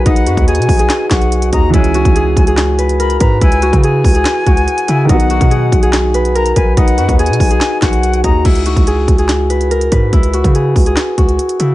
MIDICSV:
0, 0, Header, 1, 6, 480
1, 0, Start_track
1, 0, Tempo, 419580
1, 67, Time_signature, 4, 2, 24, 8
1, 13439, End_track
2, 0, Start_track
2, 0, Title_t, "Flute"
2, 0, Program_c, 0, 73
2, 67, Note_on_c, 0, 78, 103
2, 518, Note_off_c, 0, 78, 0
2, 547, Note_on_c, 0, 80, 86
2, 1224, Note_off_c, 0, 80, 0
2, 1269, Note_on_c, 0, 78, 88
2, 1719, Note_off_c, 0, 78, 0
2, 1747, Note_on_c, 0, 82, 87
2, 1975, Note_off_c, 0, 82, 0
2, 1983, Note_on_c, 0, 80, 101
2, 2900, Note_off_c, 0, 80, 0
2, 3428, Note_on_c, 0, 83, 86
2, 3656, Note_off_c, 0, 83, 0
2, 3668, Note_on_c, 0, 82, 82
2, 3896, Note_off_c, 0, 82, 0
2, 3911, Note_on_c, 0, 80, 109
2, 4361, Note_off_c, 0, 80, 0
2, 4390, Note_on_c, 0, 80, 94
2, 5783, Note_off_c, 0, 80, 0
2, 5826, Note_on_c, 0, 78, 122
2, 6741, Note_off_c, 0, 78, 0
2, 7272, Note_on_c, 0, 82, 92
2, 7498, Note_off_c, 0, 82, 0
2, 7504, Note_on_c, 0, 80, 83
2, 7734, Note_off_c, 0, 80, 0
2, 7746, Note_on_c, 0, 78, 100
2, 8198, Note_off_c, 0, 78, 0
2, 8226, Note_on_c, 0, 80, 84
2, 8904, Note_off_c, 0, 80, 0
2, 8949, Note_on_c, 0, 78, 88
2, 9399, Note_off_c, 0, 78, 0
2, 9426, Note_on_c, 0, 82, 88
2, 9655, Note_off_c, 0, 82, 0
2, 13439, End_track
3, 0, Start_track
3, 0, Title_t, "Harp"
3, 0, Program_c, 1, 46
3, 0, Note_on_c, 1, 66, 98
3, 0, Note_on_c, 1, 68, 86
3, 0, Note_on_c, 1, 71, 82
3, 71, Note_on_c, 1, 63, 109
3, 301, Note_off_c, 1, 66, 0
3, 305, Note_on_c, 1, 66, 86
3, 544, Note_off_c, 1, 68, 0
3, 548, Note_on_c, 1, 68, 78
3, 904, Note_off_c, 1, 68, 0
3, 908, Note_on_c, 1, 68, 88
3, 1264, Note_off_c, 1, 66, 0
3, 1269, Note_on_c, 1, 66, 86
3, 1742, Note_off_c, 1, 63, 0
3, 1747, Note_on_c, 1, 63, 83
3, 1988, Note_on_c, 1, 64, 106
3, 2056, Note_off_c, 1, 63, 0
3, 2171, Note_off_c, 1, 71, 0
3, 2222, Note_off_c, 1, 66, 0
3, 2227, Note_on_c, 1, 66, 92
3, 2465, Note_off_c, 1, 68, 0
3, 2469, Note_on_c, 1, 68, 84
3, 2826, Note_off_c, 1, 68, 0
3, 2830, Note_on_c, 1, 68, 77
3, 3186, Note_on_c, 1, 71, 80
3, 3427, Note_on_c, 1, 70, 86
3, 3495, Note_off_c, 1, 71, 0
3, 3668, Note_on_c, 1, 71, 79
3, 3737, Note_off_c, 1, 70, 0
3, 3899, Note_off_c, 1, 64, 0
3, 3904, Note_on_c, 1, 64, 101
3, 4141, Note_off_c, 1, 66, 0
3, 4146, Note_on_c, 1, 66, 91
3, 4387, Note_off_c, 1, 68, 0
3, 4391, Note_on_c, 1, 68, 80
3, 4745, Note_off_c, 1, 68, 0
3, 4749, Note_on_c, 1, 68, 81
3, 5102, Note_off_c, 1, 66, 0
3, 5106, Note_on_c, 1, 66, 90
3, 5584, Note_off_c, 1, 64, 0
3, 5588, Note_on_c, 1, 64, 80
3, 5830, Note_on_c, 1, 63, 100
3, 5898, Note_off_c, 1, 64, 0
3, 6013, Note_off_c, 1, 71, 0
3, 6063, Note_off_c, 1, 66, 0
3, 6068, Note_on_c, 1, 66, 97
3, 6297, Note_off_c, 1, 68, 0
3, 6301, Note_on_c, 1, 68, 83
3, 6664, Note_off_c, 1, 68, 0
3, 6668, Note_on_c, 1, 68, 86
3, 7029, Note_on_c, 1, 71, 88
3, 7268, Note_on_c, 1, 70, 89
3, 7336, Note_off_c, 1, 71, 0
3, 7506, Note_on_c, 1, 71, 80
3, 7575, Note_off_c, 1, 70, 0
3, 7746, Note_off_c, 1, 63, 0
3, 7751, Note_on_c, 1, 63, 104
3, 7980, Note_off_c, 1, 66, 0
3, 7985, Note_on_c, 1, 66, 87
3, 8223, Note_off_c, 1, 68, 0
3, 8227, Note_on_c, 1, 68, 77
3, 8583, Note_off_c, 1, 68, 0
3, 8588, Note_on_c, 1, 68, 89
3, 8945, Note_off_c, 1, 66, 0
3, 8949, Note_on_c, 1, 66, 87
3, 9422, Note_off_c, 1, 63, 0
3, 9427, Note_on_c, 1, 63, 79
3, 9668, Note_on_c, 1, 64, 100
3, 9737, Note_off_c, 1, 63, 0
3, 9851, Note_off_c, 1, 71, 0
3, 9903, Note_off_c, 1, 66, 0
3, 9907, Note_on_c, 1, 66, 87
3, 10145, Note_off_c, 1, 68, 0
3, 10150, Note_on_c, 1, 68, 78
3, 10506, Note_off_c, 1, 68, 0
3, 10511, Note_on_c, 1, 68, 77
3, 10867, Note_on_c, 1, 71, 80
3, 11107, Note_on_c, 1, 70, 83
3, 11176, Note_off_c, 1, 71, 0
3, 11348, Note_on_c, 1, 71, 78
3, 11417, Note_off_c, 1, 70, 0
3, 11579, Note_off_c, 1, 64, 0
3, 11584, Note_on_c, 1, 64, 103
3, 11821, Note_off_c, 1, 66, 0
3, 11825, Note_on_c, 1, 66, 86
3, 12066, Note_off_c, 1, 68, 0
3, 12071, Note_on_c, 1, 68, 75
3, 12424, Note_off_c, 1, 68, 0
3, 12429, Note_on_c, 1, 68, 77
3, 12781, Note_off_c, 1, 66, 0
3, 12785, Note_on_c, 1, 66, 88
3, 13263, Note_off_c, 1, 64, 0
3, 13268, Note_on_c, 1, 64, 78
3, 13439, Note_off_c, 1, 64, 0
3, 13439, Note_off_c, 1, 66, 0
3, 13439, Note_off_c, 1, 68, 0
3, 13439, Note_off_c, 1, 71, 0
3, 13439, End_track
4, 0, Start_track
4, 0, Title_t, "Grand piano"
4, 0, Program_c, 2, 0
4, 0, Control_c, 2, 64, 127
4, 0, Note_on_c, 2, 51, 75
4, 0, Note_on_c, 2, 54, 67
4, 0, Note_on_c, 2, 59, 66
4, 0, Note_on_c, 2, 66, 80
4, 1917, Note_off_c, 2, 51, 0
4, 1933, Note_off_c, 2, 54, 0
4, 1943, Note_on_c, 2, 52, 71
4, 1950, Note_off_c, 2, 59, 0
4, 1967, Note_off_c, 2, 66, 0
4, 1977, Note_on_c, 2, 56, 67
4, 2001, Control_c, 2, 64, 0
4, 2010, Note_on_c, 2, 61, 68
4, 2044, Note_on_c, 2, 68, 77
4, 2232, Control_c, 2, 64, 127
4, 5759, Note_off_c, 2, 52, 0
4, 5776, Note_off_c, 2, 56, 0
4, 5777, Note_on_c, 2, 51, 74
4, 5793, Note_off_c, 2, 61, 0
4, 5810, Note_off_c, 2, 68, 0
4, 5811, Note_on_c, 2, 54, 66
4, 5842, Control_c, 2, 64, 0
4, 5845, Note_on_c, 2, 59, 66
4, 5879, Note_on_c, 2, 66, 81
4, 6042, Control_c, 2, 64, 127
4, 9597, Note_off_c, 2, 51, 0
4, 9613, Note_off_c, 2, 54, 0
4, 9631, Note_off_c, 2, 59, 0
4, 9647, Note_off_c, 2, 66, 0
4, 9683, Control_c, 2, 64, 0
4, 13439, End_track
5, 0, Start_track
5, 0, Title_t, "808-style bass"
5, 0, Program_c, 3, 38
5, 67, Note_on_c, 3, 35, 108
5, 307, Note_on_c, 3, 42, 101
5, 324, Note_off_c, 3, 35, 0
5, 421, Note_off_c, 3, 42, 0
5, 426, Note_on_c, 3, 39, 105
5, 668, Note_on_c, 3, 47, 100
5, 685, Note_off_c, 3, 39, 0
5, 782, Note_off_c, 3, 47, 0
5, 786, Note_on_c, 3, 35, 108
5, 1017, Note_off_c, 3, 35, 0
5, 1268, Note_on_c, 3, 35, 108
5, 1729, Note_off_c, 3, 35, 0
5, 1748, Note_on_c, 3, 39, 105
5, 1978, Note_off_c, 3, 39, 0
5, 1987, Note_on_c, 3, 37, 108
5, 2333, Note_off_c, 3, 37, 0
5, 2346, Note_on_c, 3, 37, 101
5, 2693, Note_off_c, 3, 37, 0
5, 2707, Note_on_c, 3, 37, 108
5, 3629, Note_off_c, 3, 37, 0
5, 3668, Note_on_c, 3, 44, 103
5, 3898, Note_off_c, 3, 44, 0
5, 3907, Note_on_c, 3, 37, 110
5, 4253, Note_off_c, 3, 37, 0
5, 4266, Note_on_c, 3, 49, 102
5, 4612, Note_off_c, 3, 49, 0
5, 4627, Note_on_c, 3, 37, 109
5, 4857, Note_off_c, 3, 37, 0
5, 5108, Note_on_c, 3, 37, 107
5, 5338, Note_off_c, 3, 37, 0
5, 5587, Note_on_c, 3, 49, 105
5, 5818, Note_off_c, 3, 49, 0
5, 5827, Note_on_c, 3, 35, 109
5, 6173, Note_off_c, 3, 35, 0
5, 6186, Note_on_c, 3, 47, 102
5, 6532, Note_off_c, 3, 47, 0
5, 6547, Note_on_c, 3, 35, 105
5, 7469, Note_off_c, 3, 35, 0
5, 7508, Note_on_c, 3, 35, 104
5, 7738, Note_off_c, 3, 35, 0
5, 7747, Note_on_c, 3, 35, 105
5, 7988, Note_on_c, 3, 42, 102
5, 8005, Note_off_c, 3, 35, 0
5, 8102, Note_off_c, 3, 42, 0
5, 8107, Note_on_c, 3, 39, 106
5, 8348, Note_on_c, 3, 47, 101
5, 8365, Note_off_c, 3, 39, 0
5, 8462, Note_off_c, 3, 47, 0
5, 8467, Note_on_c, 3, 35, 107
5, 8698, Note_off_c, 3, 35, 0
5, 8948, Note_on_c, 3, 35, 111
5, 9409, Note_off_c, 3, 35, 0
5, 9428, Note_on_c, 3, 39, 106
5, 9658, Note_off_c, 3, 39, 0
5, 9667, Note_on_c, 3, 37, 105
5, 10013, Note_off_c, 3, 37, 0
5, 10026, Note_on_c, 3, 37, 101
5, 10373, Note_off_c, 3, 37, 0
5, 10387, Note_on_c, 3, 37, 105
5, 11309, Note_off_c, 3, 37, 0
5, 11348, Note_on_c, 3, 44, 103
5, 11578, Note_off_c, 3, 44, 0
5, 11587, Note_on_c, 3, 37, 106
5, 11933, Note_off_c, 3, 37, 0
5, 11946, Note_on_c, 3, 49, 100
5, 12293, Note_off_c, 3, 49, 0
5, 12307, Note_on_c, 3, 37, 102
5, 12538, Note_off_c, 3, 37, 0
5, 12788, Note_on_c, 3, 37, 105
5, 13018, Note_off_c, 3, 37, 0
5, 13267, Note_on_c, 3, 49, 104
5, 13439, Note_off_c, 3, 49, 0
5, 13439, End_track
6, 0, Start_track
6, 0, Title_t, "Drums"
6, 67, Note_on_c, 9, 36, 118
6, 67, Note_on_c, 9, 42, 79
6, 181, Note_off_c, 9, 42, 0
6, 182, Note_off_c, 9, 36, 0
6, 186, Note_on_c, 9, 42, 62
6, 300, Note_off_c, 9, 42, 0
6, 303, Note_on_c, 9, 42, 74
6, 418, Note_off_c, 9, 42, 0
6, 426, Note_on_c, 9, 36, 101
6, 430, Note_on_c, 9, 42, 55
6, 541, Note_off_c, 9, 36, 0
6, 544, Note_off_c, 9, 42, 0
6, 547, Note_on_c, 9, 42, 62
6, 627, Note_off_c, 9, 42, 0
6, 627, Note_on_c, 9, 42, 65
6, 707, Note_off_c, 9, 42, 0
6, 707, Note_on_c, 9, 42, 64
6, 787, Note_on_c, 9, 36, 99
6, 790, Note_on_c, 9, 46, 80
6, 822, Note_off_c, 9, 42, 0
6, 901, Note_off_c, 9, 36, 0
6, 905, Note_off_c, 9, 46, 0
6, 907, Note_on_c, 9, 42, 58
6, 1021, Note_off_c, 9, 42, 0
6, 1024, Note_on_c, 9, 39, 87
6, 1028, Note_on_c, 9, 38, 114
6, 1029, Note_on_c, 9, 42, 91
6, 1138, Note_off_c, 9, 39, 0
6, 1142, Note_off_c, 9, 38, 0
6, 1143, Note_off_c, 9, 42, 0
6, 1264, Note_on_c, 9, 39, 89
6, 1268, Note_on_c, 9, 36, 92
6, 1268, Note_on_c, 9, 38, 110
6, 1268, Note_on_c, 9, 42, 71
6, 1378, Note_off_c, 9, 39, 0
6, 1383, Note_off_c, 9, 36, 0
6, 1383, Note_off_c, 9, 38, 0
6, 1383, Note_off_c, 9, 42, 0
6, 1391, Note_on_c, 9, 42, 43
6, 1505, Note_off_c, 9, 42, 0
6, 1510, Note_on_c, 9, 42, 72
6, 1625, Note_off_c, 9, 42, 0
6, 1626, Note_on_c, 9, 42, 60
6, 1741, Note_off_c, 9, 42, 0
6, 1746, Note_on_c, 9, 42, 96
6, 1748, Note_on_c, 9, 36, 94
6, 1861, Note_off_c, 9, 42, 0
6, 1862, Note_off_c, 9, 36, 0
6, 1987, Note_on_c, 9, 36, 117
6, 1987, Note_on_c, 9, 42, 78
6, 2101, Note_off_c, 9, 42, 0
6, 2102, Note_off_c, 9, 36, 0
6, 2106, Note_on_c, 9, 42, 64
6, 2220, Note_off_c, 9, 42, 0
6, 2224, Note_on_c, 9, 42, 76
6, 2338, Note_off_c, 9, 42, 0
6, 2346, Note_on_c, 9, 36, 104
6, 2350, Note_on_c, 9, 42, 58
6, 2461, Note_off_c, 9, 36, 0
6, 2464, Note_off_c, 9, 42, 0
6, 2468, Note_on_c, 9, 42, 74
6, 2582, Note_off_c, 9, 42, 0
6, 2707, Note_on_c, 9, 36, 96
6, 2710, Note_on_c, 9, 42, 79
6, 2821, Note_off_c, 9, 36, 0
6, 2825, Note_off_c, 9, 42, 0
6, 2827, Note_on_c, 9, 42, 57
6, 2941, Note_off_c, 9, 42, 0
6, 2943, Note_on_c, 9, 39, 89
6, 2947, Note_on_c, 9, 38, 117
6, 2948, Note_on_c, 9, 42, 94
6, 3057, Note_off_c, 9, 39, 0
6, 3062, Note_off_c, 9, 38, 0
6, 3062, Note_off_c, 9, 42, 0
6, 3188, Note_on_c, 9, 42, 74
6, 3303, Note_off_c, 9, 42, 0
6, 3310, Note_on_c, 9, 42, 45
6, 3425, Note_off_c, 9, 42, 0
6, 3430, Note_on_c, 9, 42, 74
6, 3545, Note_off_c, 9, 42, 0
6, 3545, Note_on_c, 9, 42, 59
6, 3660, Note_off_c, 9, 42, 0
6, 3666, Note_on_c, 9, 42, 98
6, 3668, Note_on_c, 9, 36, 98
6, 3780, Note_off_c, 9, 42, 0
6, 3782, Note_off_c, 9, 36, 0
6, 3906, Note_on_c, 9, 42, 77
6, 3907, Note_on_c, 9, 36, 120
6, 4021, Note_off_c, 9, 36, 0
6, 4021, Note_off_c, 9, 42, 0
6, 4025, Note_on_c, 9, 42, 60
6, 4140, Note_off_c, 9, 42, 0
6, 4143, Note_on_c, 9, 42, 72
6, 4258, Note_off_c, 9, 42, 0
6, 4266, Note_on_c, 9, 36, 100
6, 4269, Note_on_c, 9, 42, 58
6, 4381, Note_off_c, 9, 36, 0
6, 4383, Note_off_c, 9, 42, 0
6, 4387, Note_on_c, 9, 42, 75
6, 4502, Note_off_c, 9, 42, 0
6, 4626, Note_on_c, 9, 36, 97
6, 4630, Note_on_c, 9, 46, 82
6, 4741, Note_off_c, 9, 36, 0
6, 4744, Note_off_c, 9, 46, 0
6, 4746, Note_on_c, 9, 42, 59
6, 4861, Note_off_c, 9, 42, 0
6, 4863, Note_on_c, 9, 39, 93
6, 4867, Note_on_c, 9, 38, 113
6, 4868, Note_on_c, 9, 42, 97
6, 4977, Note_off_c, 9, 39, 0
6, 4982, Note_off_c, 9, 38, 0
6, 4982, Note_off_c, 9, 42, 0
6, 5108, Note_on_c, 9, 36, 94
6, 5108, Note_on_c, 9, 42, 72
6, 5222, Note_off_c, 9, 36, 0
6, 5222, Note_off_c, 9, 42, 0
6, 5230, Note_on_c, 9, 42, 45
6, 5344, Note_off_c, 9, 42, 0
6, 5350, Note_on_c, 9, 42, 73
6, 5465, Note_off_c, 9, 42, 0
6, 5466, Note_on_c, 9, 42, 60
6, 5580, Note_off_c, 9, 42, 0
6, 5586, Note_on_c, 9, 42, 95
6, 5701, Note_off_c, 9, 42, 0
6, 5827, Note_on_c, 9, 36, 118
6, 5827, Note_on_c, 9, 42, 81
6, 5941, Note_off_c, 9, 42, 0
6, 5942, Note_off_c, 9, 36, 0
6, 5945, Note_on_c, 9, 42, 60
6, 6060, Note_off_c, 9, 42, 0
6, 6063, Note_on_c, 9, 42, 74
6, 6177, Note_off_c, 9, 42, 0
6, 6186, Note_on_c, 9, 36, 105
6, 6189, Note_on_c, 9, 42, 58
6, 6301, Note_off_c, 9, 36, 0
6, 6303, Note_off_c, 9, 42, 0
6, 6307, Note_on_c, 9, 42, 75
6, 6422, Note_off_c, 9, 42, 0
6, 6547, Note_on_c, 9, 36, 97
6, 6550, Note_on_c, 9, 42, 82
6, 6661, Note_off_c, 9, 36, 0
6, 6664, Note_off_c, 9, 42, 0
6, 6666, Note_on_c, 9, 42, 57
6, 6781, Note_off_c, 9, 42, 0
6, 6783, Note_on_c, 9, 39, 91
6, 6787, Note_on_c, 9, 38, 112
6, 6788, Note_on_c, 9, 42, 91
6, 6897, Note_off_c, 9, 39, 0
6, 6902, Note_off_c, 9, 38, 0
6, 6902, Note_off_c, 9, 42, 0
6, 7028, Note_on_c, 9, 42, 70
6, 7142, Note_off_c, 9, 42, 0
6, 7151, Note_on_c, 9, 42, 46
6, 7265, Note_off_c, 9, 42, 0
6, 7271, Note_on_c, 9, 42, 74
6, 7385, Note_off_c, 9, 42, 0
6, 7386, Note_on_c, 9, 42, 59
6, 7501, Note_off_c, 9, 42, 0
6, 7507, Note_on_c, 9, 42, 96
6, 7508, Note_on_c, 9, 36, 96
6, 7621, Note_off_c, 9, 42, 0
6, 7622, Note_off_c, 9, 36, 0
6, 7747, Note_on_c, 9, 36, 121
6, 7747, Note_on_c, 9, 42, 78
6, 7861, Note_off_c, 9, 42, 0
6, 7862, Note_off_c, 9, 36, 0
6, 7866, Note_on_c, 9, 42, 62
6, 7981, Note_off_c, 9, 42, 0
6, 7984, Note_on_c, 9, 42, 76
6, 8098, Note_off_c, 9, 42, 0
6, 8107, Note_on_c, 9, 36, 102
6, 8110, Note_on_c, 9, 42, 57
6, 8221, Note_off_c, 9, 36, 0
6, 8224, Note_off_c, 9, 42, 0
6, 8228, Note_on_c, 9, 42, 62
6, 8308, Note_off_c, 9, 42, 0
6, 8308, Note_on_c, 9, 42, 61
6, 8388, Note_off_c, 9, 42, 0
6, 8388, Note_on_c, 9, 42, 65
6, 8467, Note_on_c, 9, 36, 97
6, 8471, Note_on_c, 9, 46, 80
6, 8502, Note_off_c, 9, 42, 0
6, 8581, Note_off_c, 9, 36, 0
6, 8585, Note_off_c, 9, 46, 0
6, 8587, Note_on_c, 9, 42, 58
6, 8702, Note_off_c, 9, 42, 0
6, 8704, Note_on_c, 9, 39, 91
6, 8708, Note_on_c, 9, 38, 112
6, 8709, Note_on_c, 9, 42, 92
6, 8818, Note_off_c, 9, 39, 0
6, 8823, Note_off_c, 9, 38, 0
6, 8823, Note_off_c, 9, 42, 0
6, 8944, Note_on_c, 9, 39, 87
6, 8948, Note_on_c, 9, 36, 92
6, 8948, Note_on_c, 9, 38, 111
6, 8949, Note_on_c, 9, 42, 72
6, 9058, Note_off_c, 9, 39, 0
6, 9063, Note_off_c, 9, 36, 0
6, 9063, Note_off_c, 9, 38, 0
6, 9063, Note_off_c, 9, 42, 0
6, 9071, Note_on_c, 9, 42, 45
6, 9185, Note_off_c, 9, 42, 0
6, 9191, Note_on_c, 9, 42, 73
6, 9305, Note_off_c, 9, 42, 0
6, 9306, Note_on_c, 9, 42, 59
6, 9421, Note_off_c, 9, 42, 0
6, 9427, Note_on_c, 9, 42, 97
6, 9428, Note_on_c, 9, 36, 97
6, 9541, Note_off_c, 9, 42, 0
6, 9543, Note_off_c, 9, 36, 0
6, 9667, Note_on_c, 9, 36, 109
6, 9667, Note_on_c, 9, 42, 77
6, 9667, Note_on_c, 9, 49, 94
6, 9781, Note_off_c, 9, 42, 0
6, 9782, Note_off_c, 9, 36, 0
6, 9782, Note_off_c, 9, 49, 0
6, 9786, Note_on_c, 9, 42, 60
6, 9900, Note_off_c, 9, 42, 0
6, 9904, Note_on_c, 9, 42, 73
6, 10018, Note_off_c, 9, 42, 0
6, 10026, Note_on_c, 9, 36, 99
6, 10030, Note_on_c, 9, 42, 56
6, 10141, Note_off_c, 9, 36, 0
6, 10144, Note_off_c, 9, 42, 0
6, 10148, Note_on_c, 9, 42, 73
6, 10262, Note_off_c, 9, 42, 0
6, 10387, Note_on_c, 9, 36, 98
6, 10390, Note_on_c, 9, 42, 78
6, 10501, Note_off_c, 9, 36, 0
6, 10505, Note_off_c, 9, 42, 0
6, 10507, Note_on_c, 9, 42, 54
6, 10621, Note_off_c, 9, 42, 0
6, 10624, Note_on_c, 9, 39, 89
6, 10628, Note_on_c, 9, 38, 111
6, 10629, Note_on_c, 9, 42, 93
6, 10738, Note_off_c, 9, 39, 0
6, 10743, Note_off_c, 9, 38, 0
6, 10743, Note_off_c, 9, 42, 0
6, 10869, Note_on_c, 9, 42, 72
6, 10983, Note_off_c, 9, 42, 0
6, 10991, Note_on_c, 9, 42, 45
6, 11105, Note_off_c, 9, 42, 0
6, 11111, Note_on_c, 9, 42, 71
6, 11225, Note_off_c, 9, 42, 0
6, 11226, Note_on_c, 9, 42, 57
6, 11340, Note_off_c, 9, 42, 0
6, 11346, Note_on_c, 9, 42, 97
6, 11348, Note_on_c, 9, 36, 94
6, 11461, Note_off_c, 9, 42, 0
6, 11462, Note_off_c, 9, 36, 0
6, 11587, Note_on_c, 9, 36, 114
6, 11587, Note_on_c, 9, 42, 76
6, 11702, Note_off_c, 9, 36, 0
6, 11702, Note_off_c, 9, 42, 0
6, 11706, Note_on_c, 9, 42, 59
6, 11820, Note_off_c, 9, 42, 0
6, 11823, Note_on_c, 9, 42, 72
6, 11938, Note_off_c, 9, 42, 0
6, 11946, Note_on_c, 9, 36, 99
6, 11950, Note_on_c, 9, 42, 55
6, 12061, Note_off_c, 9, 36, 0
6, 12064, Note_off_c, 9, 42, 0
6, 12068, Note_on_c, 9, 42, 72
6, 12182, Note_off_c, 9, 42, 0
6, 12307, Note_on_c, 9, 36, 97
6, 12310, Note_on_c, 9, 46, 76
6, 12421, Note_off_c, 9, 36, 0
6, 12425, Note_off_c, 9, 46, 0
6, 12427, Note_on_c, 9, 42, 56
6, 12541, Note_off_c, 9, 42, 0
6, 12543, Note_on_c, 9, 39, 87
6, 12548, Note_on_c, 9, 38, 111
6, 12548, Note_on_c, 9, 42, 92
6, 12658, Note_off_c, 9, 39, 0
6, 12662, Note_off_c, 9, 38, 0
6, 12663, Note_off_c, 9, 42, 0
6, 12788, Note_on_c, 9, 36, 91
6, 12789, Note_on_c, 9, 42, 72
6, 12903, Note_off_c, 9, 36, 0
6, 12903, Note_off_c, 9, 42, 0
6, 12911, Note_on_c, 9, 42, 43
6, 13025, Note_off_c, 9, 42, 0
6, 13031, Note_on_c, 9, 42, 73
6, 13146, Note_off_c, 9, 42, 0
6, 13147, Note_on_c, 9, 42, 58
6, 13261, Note_off_c, 9, 42, 0
6, 13267, Note_on_c, 9, 42, 95
6, 13381, Note_off_c, 9, 42, 0
6, 13439, End_track
0, 0, End_of_file